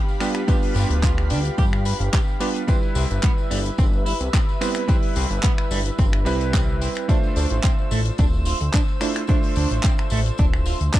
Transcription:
Already playing: G3 B3 D4 F4 G4 B4 F5 B5
0.08 tambourine
0.20 G3 B3 D4 F4 G4 B4, finger snap, open hi-hat, tambourine
0.35 finger snap, closed hi-hat, tambourine
0.47 G3 B3 D4 F4 G4 B4, kick, closed hi-hat, tambourine
0.62 open hi-hat, tambourine
0.74 G1 G4, open hi-hat, tambourine
0.90 D1, closed hi-hat, tambourine
1.03 F4, kick, clap, closed hi-hat, tambourine
1.18 finger snap, tambourine
1.30 D2 D4, open hi-hat, tambourine
1.45 closed hi-hat, tambourine
1.58 G2 G4, kick, closed hi-hat, tambourine
1.73 finger snap, tambourine
1.85 B4, open hi-hat, tambourine
2.00 G1, closed hi-hat, tambourine
2.13 G4, kick, clap, closed hi-hat, tambourine
2.28 tambourine
2.40 G3 B3 D4 F4 G4 B4, open hi-hat, tambourine
2.55 closed hi-hat, tambourine
2.67 G3 C4 E4 B4 E5, kick, closed hi-hat, tambourine
2.83 tambourine
2.95 C2 C4, open hi-hat, tambourine
3.11 G1, closed hi-hat, tambourine
3.23 B3, kick, clap, closed hi-hat, tambourine
3.38 tambourine
3.51 G1 G3, open hi-hat, tambourine
3.65 closed hi-hat, tambourine
3.78 G1 C4, kick, closed hi-hat, tambourine
3.93 tambourine
4.06 E4, open hi-hat, tambourine
4.20 C2, closed hi-hat, tambourine
4.33 C4, kick, clap, closed hi-hat, tambourine
4.49 tambourine
4.61 G3 B3 C4 E4 B4, finger snap, open hi-hat, tambourine
4.75 finger snap, closed hi-hat
4.88 G3 C4 E4 B4, kick, closed hi-hat, tambourine
5.02 open hi-hat, tambourine
5.16 C2 C4, open hi-hat, tambourine
5.30 G1, closed hi-hat, tambourine
5.43 B3, kick, clap, closed hi-hat, tambourine
5.58 finger snap, tambourine
5.71 G1 G3, open hi-hat, tambourine
5.86 closed hi-hat, tambourine
5.98 G1 C4, kick, closed hi-hat, tambourine
6.13 finger snap, tambourine
6.25 C2 G3 C4 E4 B4, open hi-hat, tambourine
6.41 closed hi-hat, tambourine
6.54 C4, kick, clap, closed hi-hat, tambourine
6.69 tambourine
6.81 C4, open hi-hat, tambourine
6.95 finger snap, closed hi-hat, tambourine
7.08 A3 D4 F4 C5 E5 E6, kick, closed hi-hat, tambourine
7.23 tambourine
7.36 D2 D4, open hi-hat, tambourine
7.50 A1, closed hi-hat, tambourine
7.63 C4, kick, clap, closed hi-hat, tambourine
7.78 tambourine
7.91 A1 A3, open hi-hat, tambourine
8.05 closed hi-hat, tambourine
8.18 D1 D4, kick, closed hi-hat, tambourine
8.33 tambourine
8.45 F4, open hi-hat, tambourine
8.60 D2, closed hi-hat, tambourine
8.73 D4, kick, clap, closed hi-hat, tambourine
8.88 tambourine
9.01 A3 D4 E4 F4 C5, finger snap, open hi-hat, tambourine
9.15 finger snap, closed hi-hat, tambourine
9.27 A3 D4 F4 C5 E5, kick, closed hi-hat, tambourine
9.43 open hi-hat, tambourine
9.56 D2 D4, open hi-hat, tambourine
9.70 A1, closed hi-hat, tambourine
9.83 C4, kick, clap, closed hi-hat, tambourine
9.98 finger snap, tambourine
10.10 A1 A3, open hi-hat, tambourine
10.26 closed hi-hat, tambourine
10.38 D1 D4, kick, closed hi-hat, tambourine
10.53 finger snap, tambourine
10.66 F4, open hi-hat, tambourine
10.80 D2, closed hi-hat, tambourine
10.94 D4, kick, clap, closed hi-hat, tambourine

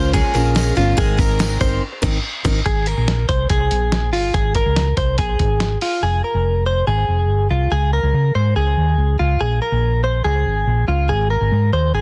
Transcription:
Already playing: C#2 C#4 F4 A#4 C5
0.13 A#2 G#3 C#4 F4 G#4 A#4, kick, ride, tambourine
0.34 A#1 C#4 F4 A#4, ride, tambourine
0.55 G#3 C#4 F4 A#4, snare, ride, tambourine
0.75 G1 C#4 F4 A#4, ride, tambourine
0.97 G#1 G#3 C4 D#4 G#4 A#4, kick, ride, tambourine
1.17 C4 D#4 A#4, kick, ride, tambourine
1.39 G#3 C4 D#4 A#4, snare, ride, tambourine
1.60 G1 C4 D#4 A#4 C5, kick, ride, tambourine
2.02 G#1 C4 D#4 A#4, kick, snare, crash
2.44 G#1 C4 D#4 A#4, kick, snare, crash
2.66 G#1 G#4, kick, closed hi-hat
2.86 A#4, closed hi-hat
2.97 A#1
3.08 snare, closed hi-hat
3.29 C2 C5, kick, closed hi-hat
3.50 C2 G#4, kick, closed hi-hat
3.71 A#1, closed hi-hat
3.92 snare, closed hi-hat
4.13 G1 F4, open hi-hat
4.34 G#1 G#4, kick, closed hi-hat
4.55 A#4, kick, closed hi-hat
4.66 C#2
4.76 snare, closed hi-hat
4.97 C2 C5, kick, closed hi-hat
5.18 A#1 G#4, kick, closed hi-hat
5.39 G#1, kick, closed hi-hat
5.60 snare, closed hi-hat
5.81 F4, open hi-hat
6.02 F1 G#4
6.24 A#4
6.34 F1
6.66 C5
6.87 G#1 G#4
7.08 F1
7.29 G1
7.50 C2 F4
7.71 C#2 G#4
7.93 A#4
8.03 C#2
8.13 C#3
8.35 G#2 C5
8.56 C#2 G#4
8.77 D#2
8.98 C#2
9.19 C#2 F4
9.40 A#1 G#4
9.62 A#4
9.72 A#1
10.04 C5
10.24 C#2 G#4
10.46 G#1
10.67 A#1
10.88 C#2 F4
11.09 G#1 G#4
11.30 A#4
11.41 G#1
11.51 G#2
11.72 D#2 C5
11.93 G#1 G#4

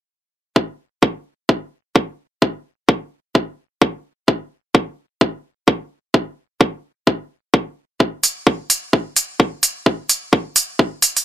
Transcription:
0.56 kick
1.03 kick
1.49 kick
1.96 kick
2.42 kick
2.89 kick
3.35 kick
3.82 kick
4.28 kick
4.75 kick
5.21 kick
5.68 kick
6.14 kick
6.61 kick
7.07 kick
7.54 kick
8.00 kick
8.23 open hi-hat
8.47 kick
8.70 open hi-hat
8.93 kick
9.16 open hi-hat
9.40 kick
9.63 open hi-hat
9.86 kick
10.09 open hi-hat
10.33 kick
10.56 open hi-hat
10.79 kick
11.02 open hi-hat
11.17 open hi-hat

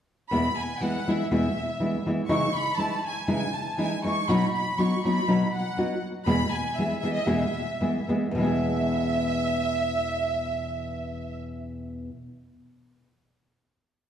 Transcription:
0.31 E2 B2 E3 G#3 B3 E4 B5
0.58 G#5
0.81 E3 G#3 B3 E4 F#5
1.08 E3 G#3 B3 E4 E5
1.31 E2 B2 E3 G#3 B3 E4 E5
1.80 E3 G#3 B3 E4
2.06 E3 G#3 B3 E4
2.29 C#3 E3 G#3 D#4 E4 C#6
2.55 B5
2.77 E3 G#3 D#4 E4 A5
3.06 G#5
3.28 C#3 E3 G#3 D#4 E4 G#5
3.55 A5
3.78 E3 G#3 D#4 E4 G#5
4.04 E3 G#3 D#4 E4 C#6
4.28 B2 F#3 B3 D#4 F#4 B5
4.54 B5
4.78 F#3 B3 D#4 F#4 C#6
5.05 F#3 B3 D#4 F#4 B5
5.28 B2 F#3 B3 D#4 F#4
5.56 F#5
5.77 F#3 B3 D#4 F#4
6.26 E2 B2 E3 G#3 B3 G#4 B5
6.52 G#5
6.75 E3 E5
6.79 G#3 B3 G#4
7.00 E3 G#3 B3 E5
7.05 G#4
7.13 D#5
7.24 E2 B2 E3 G#3 B3 G#4 E5
7.81 E3 G#3 B3 G#4
8.08 E3 G#3 B3 G#4
8.31 E2 B2 E5
8.38 E3 G#3
8.43 B3 G#4

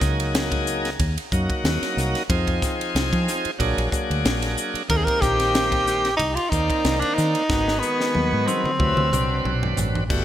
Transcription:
Already playing: F#3 A#3 D#4 G#4
0.01 C#2, kick, snare, hi-hat pedal
0.20 ride
0.35 snare, ride
0.52 kick, ride
0.67 hi-hat pedal
0.85 snare, ride
1.00 D#2, kick, ride
1.18 ride
1.32 F#2 F#3 A#3 D#4 F#4, kick, hi-hat pedal
1.50 kick, ride
1.64 D#2, snare, ride
1.82 muted fingered electric bass stroke, snare, ride
1.97 C2, snare, hi-hat pedal
2.15 snare, ride
2.29 F2 F3 C4 D#4 G#4, kick, ride
2.47 kick, ride
2.62 kick, snare, hi-hat pedal
2.81 ride
2.95 C2, snare, ride
3.12 F3, kick, ride
3.28 snare, hi-hat pedal
3.45 muted fingered electric bass stroke, ride
3.59 A#1 F#3 A#3 D4 G#4, kick, ride
3.77 A#1, ride
3.91 F#3 A#3 D4 G#4, kick, hi-hat pedal
4.10 D2, ride
4.25 A#1, snare, ride
4.42 snare, ride
4.57 hi-hat pedal
4.74 muted fingered electric bass stroke, ride
4.88 D#2 D#3 A#3 C4 G4 A#4, kick, ride
4.97 G#4
5.05 A#4, kick, ride
5.22 A#1 G4, kick, snare, hi-hat pedal
5.40 snare, ride
5.55 snare, ride
5.72 kick, ride
5.87 snare, hi-hat pedal
6.05 snare, ride
6.17 C2 D#4, kick, ride
6.35 F4, ride
6.50 D#2 D#3 A#3 C4 D#4 D5, kick, hi-hat pedal
6.70 kick, ride
6.84 C2, snare, ride
7.00 D4, muted fingered electric bass stroke, ride
7.15 D#3 D#4, snare, hi-hat pedal
7.35 ride
7.49 G#1 D#3 G#3 B3 F#4, kick, snare
7.68 snare
7.80 B3, hi-hat pedal
8.01 snare
8.15 D#2, high tom
8.33 G#2
8.47 C4, hi-hat pedal, high tom
8.64 muted fingered electric bass stroke, mid tom
8.79 D2 C3 F#3 E4 B4, kick
8.97 D2, mid tom
9.12 C2 F#3 C4 D4 B4, hi-hat pedal, mid tom
9.45 B1, mid tom
9.63 floor tom
9.77 A1, floor tom, hi-hat pedal
9.95 floor tom
10.09 G1 B2 G3 A3 F#4, kick, crash

